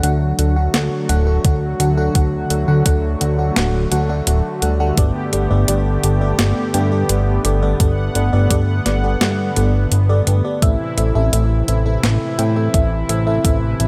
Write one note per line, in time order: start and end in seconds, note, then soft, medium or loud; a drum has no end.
0.00 0.34 D2 loud
0.00 10.58 D3 medium
0.00 0.13 D3 medium
0.00 4.94 F#3 medium
0.00 13.41 A3 medium
0.00 0.13 D4 medium
0.00 4.94 F#4 medium
0.00 0.13 F#4 medium
0.00 0.13 A4 medium
0.00 0.13 F#5 medium
0.00 closed hi-hat medium
0.39 0.69 D2 medium
0.39 0.52 D3 medium
0.39 0.52 D4 medium
0.39 0.52 F#4 medium
0.39 0.52 A4 medium
0.39 0.52 F#5 medium
0.39 closed hi-hat medium
0.56 0.70 D3 medium
0.56 0.70 D4 medium
0.56 0.70 F#4 medium
0.56 0.70 A4 medium
0.56 0.70 F#5 medium
0.74 0.89 D2 loud
0.74 1.05 D3 medium
0.74 1.05 D4 medium
0.74 1.05 F#4 medium
0.74 1.05 A4 medium
0.74 1.05 F#5 medium
0.74 snare loud
0.74 closed hi-hat medium
1.09 1.39 D1 loud
1.09 1.23 D3 medium
1.09 1.23 D4 medium
1.09 1.23 F#4 medium
1.09 1.23 A4 medium
1.09 1.23 F#5 loud
1.09 closed hi-hat medium
1.27 1.42 D3 medium
1.27 1.42 D4 medium
1.27 1.42 F#4 medium
1.27 1.42 A4 medium
1.27 1.42 F#5 medium
1.45 1.75 D2 medium
1.45 1.76 D3 medium
1.45 1.76 D4 medium
1.45 1.76 F#4 medium
1.45 1.76 A4 medium
1.45 1.76 F#5 medium
1.45 kick loud
1.45 closed hi-hat loud
1.80 2.10 D2 medium
1.80 1.93 D3 medium
1.80 1.93 D4 medium
1.80 1.93 F#4 medium
1.80 1.93 A4 medium
1.80 1.93 F#5 medium
1.80 closed hi-hat medium
1.97 2.11 D3 medium
1.97 2.11 D4 medium
1.97 2.11 F#4 medium
1.97 2.11 A4 medium
1.97 2.11 F#5 loud
2.15 2.45 D2 medium
2.15 2.46 D3 medium
2.15 2.46 D4 medium
2.15 2.46 F#4 medium
2.15 2.46 A4 medium
2.15 2.46 F#5 medium
2.15 kick loud
2.15 closed hi-hat medium
2.50 2.66 D2 medium
2.50 2.60 D3 medium
2.50 2.60 D4 medium
2.50 2.60 F#4 medium
2.50 2.60 A4 medium
2.50 2.60 F#5 medium
2.50 closed hi-hat medium
2.68 2.83 D2 loud
2.68 2.81 D3 medium
2.68 2.81 D4 medium
2.68 2.81 F#4 medium
2.68 2.81 A4 medium
2.68 2.81 F#5 loud
2.86 3.16 D2 medium
2.86 2.95 D3 medium
2.86 2.95 D4 medium
2.86 2.95 F#4 medium
2.86 2.95 A4 medium
2.86 2.95 F#5 medium
2.86 kick medium
2.86 closed hi-hat medium
3.21 3.51 D2 medium
3.21 3.34 D3 medium
3.21 3.34 D4 medium
3.21 3.34 F#4 medium
3.21 3.34 A4 medium
3.21 3.34 F#5 medium
3.21 closed hi-hat medium
3.39 3.52 D3 medium
3.39 3.52 D4 medium
3.39 3.52 F#4 medium
3.39 3.52 A4 medium
3.39 3.52 F#5 medium
3.56 3.87 D1 medium
3.56 3.87 D3 medium
3.56 3.87 D4 medium
3.56 3.87 F#4 medium
3.56 3.87 A4 medium
3.56 3.87 F#5 medium
3.56 snare loud
3.56 closed hi-hat medium
3.92 4.22 D2 loud
3.92 4.05 D3 medium
3.92 4.05 D4 medium
3.92 4.05 F#4 medium
3.92 4.05 A4 medium
3.92 4.05 F#5 loud
3.92 closed hi-hat medium
4.09 4.24 D3 medium
4.09 4.24 D4 medium
4.09 4.24 F#4 medium
4.09 4.24 A4 medium
4.09 4.24 F#5 medium
4.27 4.42 D1 medium
4.27 4.58 D3 medium
4.27 4.58 D4 medium
4.27 4.58 F#4 medium
4.27 4.58 A4 medium
4.27 4.58 F#5 medium
4.27 closed hi-hat loud
4.62 4.92 D2 medium
4.62 4.76 G3 medium
4.62 4.76 D4 medium
4.62 4.76 F#4 medium
4.62 4.76 A4 medium
4.62 4.76 F#5 medium
4.62 closed hi-hat medium
4.80 4.93 G3 loud
4.80 4.93 D4 medium
4.80 4.93 F#4 medium
4.80 4.93 A4 medium
4.80 4.93 F#5 loud
4.97 5.13 G1 loud
4.97 5.29 G2 medium
4.97 5.29 B3 medium
4.97 10.58 B3 medium
4.97 5.29 G4 medium
4.97 7.77 G4 medium
4.97 5.29 A4 medium
4.97 5.29 D5 medium
4.97 kick loud
4.97 closed hi-hat medium
5.33 5.48 G1 medium
5.33 5.42 G2 medium
5.33 5.42 B3 medium
5.33 5.42 G4 medium
5.33 5.42 A4 medium
5.33 5.42 D5 medium
5.33 closed hi-hat medium
5.51 5.66 G1 loud
5.51 5.64 G2 medium
5.51 5.64 B3 medium
5.51 5.64 G4 medium
5.51 5.64 A4 medium
5.51 5.64 D5 loud
5.68 5.98 G1 loud
5.68 5.78 G2 medium
5.68 5.78 B3 medium
5.68 5.78 G4 medium
5.68 5.78 A4 medium
5.68 5.78 D5 loud
5.68 closed hi-hat medium
6.04 6.34 G1 medium
6.04 6.17 G2 medium
6.04 6.17 B3 medium
6.04 6.17 G4 medium
6.04 6.17 A4 medium
6.04 6.17 D5 medium
6.04 closed hi-hat medium
6.21 6.35 G2 medium
6.21 6.35 B3 medium
6.21 6.35 G4 medium
6.21 6.35 A4 medium
6.21 6.35 D5 medium
6.39 6.54 G1 loud
6.39 6.70 G2 medium
6.39 6.70 B3 medium
6.39 6.70 G4 medium
6.39 6.70 A4 medium
6.39 6.70 D5 medium
6.39 snare loud
6.39 closed hi-hat medium
6.74 6.87 G2 medium
6.74 7.04 G2 loud
6.74 6.87 B3 medium
6.74 6.87 G4 medium
6.74 6.87 A4 medium
6.74 6.87 G5 loud
6.74 closed hi-hat medium
6.92 7.07 G2 medium
6.92 7.07 B3 medium
6.92 7.07 G4 medium
6.92 7.07 A4 medium
6.92 7.07 D5 medium
7.09 7.40 G1 medium
7.09 7.40 G2 medium
7.09 7.40 B3 medium
7.09 7.40 G4 medium
7.09 7.40 A4 medium
7.09 7.40 D5 medium
7.09 closed hi-hat medium
7.45 7.75 G1 medium
7.45 7.58 G2 medium
7.45 7.58 B3 medium
7.45 7.58 G4 medium
7.45 7.58 A4 medium
7.45 7.58 D5 medium
7.45 closed hi-hat medium
7.62 7.76 G2 loud
7.62 7.76 B3 medium
7.62 7.76 G4 medium
7.62 7.76 A4 medium
7.62 7.76 D5 loud
7.80 8.10 G1 loud
7.80 8.11 G2 medium
7.80 8.11 B3 medium
7.80 8.11 G4 medium
7.80 8.11 A4 medium
7.80 8.11 D5 medium
7.80 10.59 F#5 medium
7.80 kick loud
7.80 closed hi-hat medium
8.15 8.30 G1 medium
8.15 8.25 G2 medium
8.15 8.25 B3 medium
8.15 8.25 G4 medium
8.15 8.25 A4 medium
8.15 8.25 D5 medium
8.15 closed hi-hat medium
8.33 8.48 G1 loud
8.33 8.46 G2 medium
8.33 8.46 B3 medium
8.33 8.46 G4 medium
8.33 8.46 A4 medium
8.33 8.46 D5 loud
8.51 8.81 G1 medium
8.51 8.60 G2 medium
8.51 8.60 B3 medium
8.51 8.60 G4 medium
8.51 8.60 A4 medium
8.51 8.60 D5 medium
8.51 kick medium
8.51 closed hi-hat medium
8.86 9.16 G1 medium
8.86 8.99 G2 medium
8.86 8.99 B3 medium
8.86 8.99 G4 medium
8.86 8.99 A4 medium
8.86 8.99 D5 medium
8.86 snare soft
8.86 closed hi-hat medium
9.04 9.17 G2 medium
9.04 9.17 B3 medium
9.04 9.17 G4 medium
9.04 9.17 A4 medium
9.04 9.17 D5 medium
9.21 9.51 G2 medium
9.21 9.52 G2 medium
9.21 9.52 B3 medium
9.21 9.52 G4 medium
9.21 9.52 A4 medium
9.21 9.52 D5 medium
9.21 snare loud
9.21 closed hi-hat medium
9.56 9.87 G1 loud
9.56 9.71 G2 medium
9.56 9.71 B3 medium
9.56 9.71 G4 medium
9.56 9.71 A4 medium
9.56 9.71 D5 medium
9.56 closed hi-hat medium
9.92 10.22 G1 medium
9.92 closed hi-hat medium
10.09 10.24 G2 medium
10.09 10.24 B3 medium
10.09 10.24 G4 medium
10.09 10.24 A4 medium
10.09 10.24 D5 loud
10.27 10.42 G1 medium
10.27 10.36 B3 medium
10.27 10.36 G4 medium
10.27 10.36 A4 medium
10.27 10.36 B4 medium
10.27 closed hi-hat medium
10.45 10.54 B3 medium
10.45 10.54 G4 medium
10.45 10.54 A4 medium
10.45 10.54 D5 medium
10.62 10.77 A1 loud
10.62 10.93 A2 medium
10.62 13.88 C3 medium
10.62 13.88 E3 medium
10.62 10.93 C4 medium
10.62 13.88 E4 medium
10.62 10.93 E4 medium
10.62 10.93 A4 medium
10.62 10.93 E5 medium
10.62 kick loud
10.62 closed hi-hat medium
10.98 11.13 A1 medium
10.98 11.07 A2 medium
10.98 11.07 C4 medium
10.98 11.07 E4 medium
10.98 11.07 A4 medium
10.98 11.07 E5 medium
10.98 closed hi-hat medium
11.15 11.30 A1 loud
11.15 11.29 A2 medium
11.15 11.29 C4 medium
11.15 11.29 E4 medium
11.15 11.29 A4 medium
11.15 11.29 E5 loud
11.33 11.63 A1 loud
11.33 11.42 A2 medium
11.33 11.42 C4 medium
11.33 11.42 E4 medium
11.33 11.42 A4 medium
11.33 11.42 E5 loud
11.33 closed hi-hat medium
11.68 11.98 A1 medium
11.68 11.82 A2 medium
11.68 11.82 C4 medium
11.68 11.82 E4 medium
11.68 11.82 A4 medium
11.68 11.82 E5 medium
11.68 closed hi-hat medium
11.86 11.99 A2 medium
11.86 11.99 C4 medium
11.86 11.99 E4 medium
11.86 11.99 A4 medium
11.86 11.99 E5 medium
12.03 12.18 A1 loud
12.03 12.34 A2 medium
12.03 12.34 C4 medium
12.03 12.34 E4 medium
12.03 12.34 A4 medium
12.03 12.34 E5 medium
12.03 snare loud
12.03 closed hi-hat medium
12.39 12.52 A2 medium
12.39 12.69 A2 loud
12.39 12.52 C4 medium
12.39 12.52 E4 medium
12.39 12.52 A4 medium
12.39 12.52 G5 loud
12.39 closed hi-hat medium
12.56 12.71 A2 medium
12.56 12.71 C4 medium
12.56 12.71 E4 medium
12.56 12.71 A4 medium
12.56 12.71 E5 medium
12.74 13.04 A1 medium
12.74 13.05 A2 medium
12.74 13.05 C4 medium
12.74 13.05 E4 medium
12.74 13.05 A4 medium
12.74 13.05 E5 medium
12.74 kick loud
12.74 closed hi-hat medium
13.09 13.39 A1 loud
13.09 13.23 A2 medium
13.09 13.23 C4 medium
13.09 13.23 E4 medium
13.09 13.23 A4 medium
13.09 13.23 E5 medium
13.09 closed hi-hat medium
13.27 13.40 A2 medium
13.27 13.40 C4 medium
13.27 13.40 E4 medium
13.27 13.40 A4 medium
13.27 13.40 E5 loud
13.44 13.75 A1 loud
13.44 13.76 A2 medium
13.44 13.76 C4 medium
13.44 13.76 E4 medium
13.44 13.76 A4 medium
13.44 13.88 B4 medium
13.44 13.76 E5 medium
13.44 kick loud
13.44 closed hi-hat medium
13.80 13.88 A1 medium
13.80 13.88 A2 medium
13.80 13.88 C4 medium
13.80 13.88 E4 medium
13.80 13.88 A4 medium
13.80 13.88 E5 medium
13.80 closed hi-hat medium